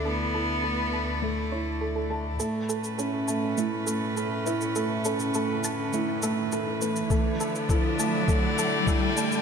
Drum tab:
SH |----------------|x-xxx-x-x-x-x-xx|x-xxx-x-x-x-x-xx|x-xxx-x-x-x-x-xx|
BD |----------------|----------------|----------------|o---o---o---o---|